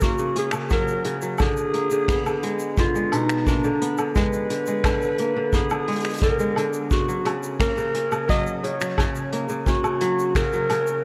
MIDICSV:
0, 0, Header, 1, 4, 480
1, 0, Start_track
1, 0, Tempo, 689655
1, 972, Time_signature, 4, 2, 24, 8
1, 7685, End_track
2, 0, Start_track
2, 0, Title_t, "Clarinet"
2, 0, Program_c, 0, 71
2, 19, Note_on_c, 0, 66, 101
2, 255, Note_off_c, 0, 66, 0
2, 268, Note_on_c, 0, 68, 90
2, 372, Note_off_c, 0, 68, 0
2, 503, Note_on_c, 0, 70, 106
2, 832, Note_off_c, 0, 70, 0
2, 988, Note_on_c, 0, 68, 106
2, 1724, Note_off_c, 0, 68, 0
2, 1946, Note_on_c, 0, 65, 99
2, 2162, Note_off_c, 0, 65, 0
2, 2183, Note_on_c, 0, 63, 97
2, 2417, Note_on_c, 0, 62, 95
2, 2427, Note_off_c, 0, 63, 0
2, 2774, Note_off_c, 0, 62, 0
2, 2897, Note_on_c, 0, 71, 115
2, 3856, Note_on_c, 0, 68, 106
2, 3866, Note_off_c, 0, 71, 0
2, 4334, Note_off_c, 0, 68, 0
2, 4337, Note_on_c, 0, 70, 101
2, 4670, Note_off_c, 0, 70, 0
2, 4815, Note_on_c, 0, 66, 104
2, 5085, Note_off_c, 0, 66, 0
2, 5292, Note_on_c, 0, 70, 109
2, 5744, Note_off_c, 0, 70, 0
2, 5774, Note_on_c, 0, 75, 121
2, 5882, Note_off_c, 0, 75, 0
2, 6011, Note_on_c, 0, 73, 104
2, 6464, Note_off_c, 0, 73, 0
2, 6728, Note_on_c, 0, 66, 97
2, 7182, Note_off_c, 0, 66, 0
2, 7210, Note_on_c, 0, 70, 110
2, 7685, Note_off_c, 0, 70, 0
2, 7685, End_track
3, 0, Start_track
3, 0, Title_t, "Kora"
3, 0, Program_c, 1, 46
3, 0, Note_on_c, 1, 49, 98
3, 0, Note_on_c, 1, 61, 82
3, 14, Note_on_c, 1, 58, 78
3, 126, Note_off_c, 1, 49, 0
3, 134, Note_on_c, 1, 49, 72
3, 247, Note_off_c, 1, 61, 0
3, 250, Note_on_c, 1, 61, 70
3, 360, Note_off_c, 1, 49, 0
3, 368, Note_on_c, 1, 49, 72
3, 492, Note_on_c, 1, 54, 104
3, 721, Note_off_c, 1, 49, 0
3, 730, Note_on_c, 1, 49, 78
3, 766, Note_off_c, 1, 54, 0
3, 852, Note_on_c, 1, 54, 73
3, 971, Note_on_c, 1, 50, 100
3, 1006, Note_off_c, 1, 49, 0
3, 1006, Note_off_c, 1, 54, 0
3, 1013, Note_off_c, 1, 61, 0
3, 1208, Note_off_c, 1, 58, 0
3, 1211, Note_on_c, 1, 58, 75
3, 1324, Note_off_c, 1, 50, 0
3, 1332, Note_on_c, 1, 50, 78
3, 1452, Note_on_c, 1, 59, 78
3, 1494, Note_off_c, 1, 58, 0
3, 1565, Note_off_c, 1, 50, 0
3, 1574, Note_on_c, 1, 50, 75
3, 1694, Note_on_c, 1, 56, 91
3, 1927, Note_off_c, 1, 50, 0
3, 1935, Note_on_c, 1, 50, 84
3, 1966, Note_off_c, 1, 56, 0
3, 2053, Note_on_c, 1, 56, 70
3, 2175, Note_on_c, 1, 47, 93
3, 2206, Note_off_c, 1, 50, 0
3, 2414, Note_on_c, 1, 58, 88
3, 2456, Note_off_c, 1, 59, 0
3, 2535, Note_on_c, 1, 50, 78
3, 2566, Note_off_c, 1, 47, 0
3, 2566, Note_off_c, 1, 56, 0
3, 2655, Note_on_c, 1, 59, 73
3, 2697, Note_off_c, 1, 58, 0
3, 2766, Note_off_c, 1, 50, 0
3, 2774, Note_on_c, 1, 50, 72
3, 2893, Note_on_c, 1, 56, 101
3, 3127, Note_off_c, 1, 50, 0
3, 3135, Note_on_c, 1, 50, 75
3, 3166, Note_off_c, 1, 56, 0
3, 3254, Note_on_c, 1, 56, 72
3, 3366, Note_off_c, 1, 50, 0
3, 3374, Note_on_c, 1, 50, 94
3, 3406, Note_off_c, 1, 56, 0
3, 3615, Note_on_c, 1, 58, 72
3, 3656, Note_off_c, 1, 59, 0
3, 3725, Note_off_c, 1, 50, 0
3, 3733, Note_on_c, 1, 50, 80
3, 3854, Note_on_c, 1, 59, 85
3, 3896, Note_off_c, 1, 58, 0
3, 3966, Note_off_c, 1, 50, 0
3, 3974, Note_on_c, 1, 50, 74
3, 4094, Note_on_c, 1, 56, 94
3, 4323, Note_off_c, 1, 50, 0
3, 4331, Note_on_c, 1, 50, 82
3, 4366, Note_off_c, 1, 56, 0
3, 4453, Note_on_c, 1, 56, 76
3, 4565, Note_off_c, 1, 50, 0
3, 4573, Note_on_c, 1, 50, 103
3, 4606, Note_off_c, 1, 56, 0
3, 4811, Note_on_c, 1, 49, 78
3, 4846, Note_off_c, 1, 50, 0
3, 4931, Note_on_c, 1, 54, 72
3, 5039, Note_off_c, 1, 49, 0
3, 5047, Note_on_c, 1, 49, 103
3, 5086, Note_off_c, 1, 54, 0
3, 5151, Note_off_c, 1, 59, 0
3, 5291, Note_on_c, 1, 58, 80
3, 5402, Note_off_c, 1, 49, 0
3, 5410, Note_on_c, 1, 49, 73
3, 5529, Note_on_c, 1, 61, 71
3, 5642, Note_off_c, 1, 49, 0
3, 5650, Note_on_c, 1, 49, 80
3, 5768, Note_on_c, 1, 54, 105
3, 6001, Note_off_c, 1, 49, 0
3, 6009, Note_on_c, 1, 49, 66
3, 6046, Note_off_c, 1, 54, 0
3, 6131, Note_on_c, 1, 54, 70
3, 6241, Note_off_c, 1, 49, 0
3, 6249, Note_on_c, 1, 49, 106
3, 6286, Note_off_c, 1, 54, 0
3, 6488, Note_off_c, 1, 58, 0
3, 6491, Note_on_c, 1, 58, 77
3, 6600, Note_off_c, 1, 49, 0
3, 6609, Note_on_c, 1, 49, 72
3, 6726, Note_off_c, 1, 61, 0
3, 6729, Note_on_c, 1, 61, 83
3, 6840, Note_off_c, 1, 49, 0
3, 6849, Note_on_c, 1, 49, 74
3, 6969, Note_on_c, 1, 54, 109
3, 7200, Note_off_c, 1, 49, 0
3, 7209, Note_on_c, 1, 49, 84
3, 7246, Note_off_c, 1, 54, 0
3, 7331, Note_on_c, 1, 54, 76
3, 7442, Note_off_c, 1, 49, 0
3, 7451, Note_on_c, 1, 49, 97
3, 7486, Note_off_c, 1, 54, 0
3, 7685, Note_off_c, 1, 49, 0
3, 7685, Note_off_c, 1, 58, 0
3, 7685, Note_off_c, 1, 61, 0
3, 7685, End_track
4, 0, Start_track
4, 0, Title_t, "Drums"
4, 6, Note_on_c, 9, 82, 67
4, 13, Note_on_c, 9, 36, 94
4, 76, Note_off_c, 9, 82, 0
4, 82, Note_off_c, 9, 36, 0
4, 127, Note_on_c, 9, 82, 52
4, 196, Note_off_c, 9, 82, 0
4, 249, Note_on_c, 9, 42, 94
4, 319, Note_off_c, 9, 42, 0
4, 357, Note_on_c, 9, 26, 79
4, 365, Note_on_c, 9, 77, 68
4, 365, Note_on_c, 9, 82, 71
4, 427, Note_off_c, 9, 26, 0
4, 434, Note_off_c, 9, 77, 0
4, 435, Note_off_c, 9, 82, 0
4, 487, Note_on_c, 9, 82, 65
4, 493, Note_on_c, 9, 36, 110
4, 556, Note_off_c, 9, 82, 0
4, 563, Note_off_c, 9, 36, 0
4, 612, Note_on_c, 9, 82, 50
4, 681, Note_off_c, 9, 82, 0
4, 728, Note_on_c, 9, 42, 98
4, 797, Note_off_c, 9, 42, 0
4, 848, Note_on_c, 9, 82, 80
4, 918, Note_off_c, 9, 82, 0
4, 963, Note_on_c, 9, 77, 79
4, 964, Note_on_c, 9, 82, 65
4, 974, Note_on_c, 9, 36, 107
4, 1032, Note_off_c, 9, 77, 0
4, 1033, Note_off_c, 9, 82, 0
4, 1043, Note_off_c, 9, 36, 0
4, 1092, Note_on_c, 9, 82, 57
4, 1161, Note_off_c, 9, 82, 0
4, 1209, Note_on_c, 9, 42, 85
4, 1279, Note_off_c, 9, 42, 0
4, 1327, Note_on_c, 9, 82, 76
4, 1397, Note_off_c, 9, 82, 0
4, 1449, Note_on_c, 9, 36, 116
4, 1453, Note_on_c, 9, 26, 84
4, 1458, Note_on_c, 9, 82, 75
4, 1519, Note_off_c, 9, 36, 0
4, 1523, Note_off_c, 9, 26, 0
4, 1527, Note_off_c, 9, 82, 0
4, 1575, Note_on_c, 9, 82, 46
4, 1576, Note_on_c, 9, 77, 71
4, 1645, Note_off_c, 9, 77, 0
4, 1645, Note_off_c, 9, 82, 0
4, 1691, Note_on_c, 9, 42, 94
4, 1761, Note_off_c, 9, 42, 0
4, 1805, Note_on_c, 9, 82, 76
4, 1875, Note_off_c, 9, 82, 0
4, 1930, Note_on_c, 9, 82, 65
4, 1931, Note_on_c, 9, 36, 105
4, 2000, Note_off_c, 9, 82, 0
4, 2001, Note_off_c, 9, 36, 0
4, 2058, Note_on_c, 9, 82, 54
4, 2127, Note_off_c, 9, 82, 0
4, 2172, Note_on_c, 9, 77, 69
4, 2174, Note_on_c, 9, 42, 97
4, 2241, Note_off_c, 9, 77, 0
4, 2243, Note_off_c, 9, 42, 0
4, 2293, Note_on_c, 9, 26, 85
4, 2294, Note_on_c, 9, 82, 88
4, 2362, Note_off_c, 9, 26, 0
4, 2364, Note_off_c, 9, 82, 0
4, 2412, Note_on_c, 9, 36, 104
4, 2415, Note_on_c, 9, 82, 75
4, 2482, Note_off_c, 9, 36, 0
4, 2485, Note_off_c, 9, 82, 0
4, 2533, Note_on_c, 9, 82, 46
4, 2603, Note_off_c, 9, 82, 0
4, 2657, Note_on_c, 9, 42, 101
4, 2726, Note_off_c, 9, 42, 0
4, 2770, Note_on_c, 9, 82, 75
4, 2774, Note_on_c, 9, 77, 74
4, 2840, Note_off_c, 9, 82, 0
4, 2843, Note_off_c, 9, 77, 0
4, 2892, Note_on_c, 9, 82, 69
4, 2894, Note_on_c, 9, 36, 104
4, 2961, Note_off_c, 9, 82, 0
4, 2963, Note_off_c, 9, 36, 0
4, 3013, Note_on_c, 9, 82, 54
4, 3083, Note_off_c, 9, 82, 0
4, 3132, Note_on_c, 9, 42, 83
4, 3202, Note_off_c, 9, 42, 0
4, 3246, Note_on_c, 9, 82, 92
4, 3316, Note_off_c, 9, 82, 0
4, 3368, Note_on_c, 9, 36, 105
4, 3369, Note_on_c, 9, 26, 74
4, 3376, Note_on_c, 9, 77, 76
4, 3380, Note_on_c, 9, 82, 69
4, 3438, Note_off_c, 9, 36, 0
4, 3439, Note_off_c, 9, 26, 0
4, 3445, Note_off_c, 9, 77, 0
4, 3450, Note_off_c, 9, 82, 0
4, 3494, Note_on_c, 9, 82, 45
4, 3564, Note_off_c, 9, 82, 0
4, 3606, Note_on_c, 9, 42, 83
4, 3676, Note_off_c, 9, 42, 0
4, 3847, Note_on_c, 9, 36, 94
4, 3849, Note_on_c, 9, 82, 72
4, 3917, Note_off_c, 9, 36, 0
4, 3918, Note_off_c, 9, 82, 0
4, 3967, Note_on_c, 9, 82, 51
4, 3975, Note_on_c, 9, 77, 79
4, 4037, Note_off_c, 9, 82, 0
4, 4045, Note_off_c, 9, 77, 0
4, 4090, Note_on_c, 9, 42, 45
4, 4119, Note_off_c, 9, 42, 0
4, 4119, Note_on_c, 9, 42, 50
4, 4147, Note_off_c, 9, 42, 0
4, 4147, Note_on_c, 9, 42, 59
4, 4177, Note_off_c, 9, 42, 0
4, 4177, Note_on_c, 9, 42, 60
4, 4207, Note_off_c, 9, 42, 0
4, 4207, Note_on_c, 9, 42, 69
4, 4207, Note_on_c, 9, 82, 32
4, 4209, Note_on_c, 9, 26, 67
4, 4237, Note_off_c, 9, 42, 0
4, 4237, Note_on_c, 9, 42, 75
4, 4248, Note_off_c, 9, 82, 0
4, 4248, Note_on_c, 9, 82, 46
4, 4269, Note_off_c, 9, 42, 0
4, 4269, Note_on_c, 9, 42, 79
4, 4279, Note_off_c, 9, 26, 0
4, 4291, Note_off_c, 9, 82, 0
4, 4291, Note_on_c, 9, 82, 59
4, 4302, Note_off_c, 9, 42, 0
4, 4302, Note_on_c, 9, 42, 82
4, 4328, Note_on_c, 9, 36, 113
4, 4334, Note_off_c, 9, 82, 0
4, 4334, Note_on_c, 9, 82, 69
4, 4372, Note_off_c, 9, 42, 0
4, 4397, Note_off_c, 9, 36, 0
4, 4403, Note_off_c, 9, 82, 0
4, 4450, Note_on_c, 9, 82, 49
4, 4519, Note_off_c, 9, 82, 0
4, 4567, Note_on_c, 9, 77, 72
4, 4575, Note_on_c, 9, 42, 91
4, 4637, Note_off_c, 9, 77, 0
4, 4644, Note_off_c, 9, 42, 0
4, 4687, Note_on_c, 9, 82, 78
4, 4757, Note_off_c, 9, 82, 0
4, 4808, Note_on_c, 9, 82, 70
4, 4809, Note_on_c, 9, 36, 104
4, 4878, Note_off_c, 9, 36, 0
4, 4878, Note_off_c, 9, 82, 0
4, 4934, Note_on_c, 9, 82, 53
4, 5004, Note_off_c, 9, 82, 0
4, 5049, Note_on_c, 9, 42, 73
4, 5055, Note_on_c, 9, 77, 71
4, 5119, Note_off_c, 9, 42, 0
4, 5125, Note_off_c, 9, 77, 0
4, 5173, Note_on_c, 9, 82, 82
4, 5243, Note_off_c, 9, 82, 0
4, 5287, Note_on_c, 9, 36, 93
4, 5293, Note_on_c, 9, 26, 79
4, 5293, Note_on_c, 9, 82, 65
4, 5357, Note_off_c, 9, 36, 0
4, 5362, Note_off_c, 9, 82, 0
4, 5363, Note_off_c, 9, 26, 0
4, 5412, Note_on_c, 9, 82, 48
4, 5481, Note_off_c, 9, 82, 0
4, 5531, Note_on_c, 9, 42, 82
4, 5600, Note_off_c, 9, 42, 0
4, 5651, Note_on_c, 9, 82, 71
4, 5652, Note_on_c, 9, 77, 72
4, 5720, Note_off_c, 9, 82, 0
4, 5722, Note_off_c, 9, 77, 0
4, 5772, Note_on_c, 9, 36, 99
4, 5773, Note_on_c, 9, 82, 64
4, 5841, Note_off_c, 9, 36, 0
4, 5843, Note_off_c, 9, 82, 0
4, 5893, Note_on_c, 9, 82, 50
4, 5963, Note_off_c, 9, 82, 0
4, 6014, Note_on_c, 9, 42, 95
4, 6083, Note_off_c, 9, 42, 0
4, 6132, Note_on_c, 9, 82, 68
4, 6136, Note_on_c, 9, 26, 74
4, 6201, Note_off_c, 9, 82, 0
4, 6205, Note_off_c, 9, 26, 0
4, 6249, Note_on_c, 9, 77, 84
4, 6250, Note_on_c, 9, 36, 100
4, 6260, Note_on_c, 9, 82, 69
4, 6319, Note_off_c, 9, 77, 0
4, 6320, Note_off_c, 9, 36, 0
4, 6329, Note_off_c, 9, 82, 0
4, 6371, Note_on_c, 9, 82, 50
4, 6441, Note_off_c, 9, 82, 0
4, 6490, Note_on_c, 9, 42, 87
4, 6560, Note_off_c, 9, 42, 0
4, 6606, Note_on_c, 9, 82, 69
4, 6675, Note_off_c, 9, 82, 0
4, 6726, Note_on_c, 9, 36, 92
4, 6728, Note_on_c, 9, 82, 69
4, 6796, Note_off_c, 9, 36, 0
4, 6797, Note_off_c, 9, 82, 0
4, 6849, Note_on_c, 9, 77, 85
4, 6852, Note_on_c, 9, 82, 51
4, 6919, Note_off_c, 9, 77, 0
4, 6922, Note_off_c, 9, 82, 0
4, 6965, Note_on_c, 9, 42, 86
4, 7035, Note_off_c, 9, 42, 0
4, 7093, Note_on_c, 9, 82, 70
4, 7163, Note_off_c, 9, 82, 0
4, 7204, Note_on_c, 9, 36, 101
4, 7209, Note_on_c, 9, 82, 62
4, 7210, Note_on_c, 9, 26, 71
4, 7274, Note_off_c, 9, 36, 0
4, 7278, Note_off_c, 9, 82, 0
4, 7280, Note_off_c, 9, 26, 0
4, 7328, Note_on_c, 9, 82, 43
4, 7398, Note_off_c, 9, 82, 0
4, 7444, Note_on_c, 9, 42, 94
4, 7445, Note_on_c, 9, 77, 72
4, 7513, Note_off_c, 9, 42, 0
4, 7515, Note_off_c, 9, 77, 0
4, 7565, Note_on_c, 9, 82, 71
4, 7635, Note_off_c, 9, 82, 0
4, 7685, End_track
0, 0, End_of_file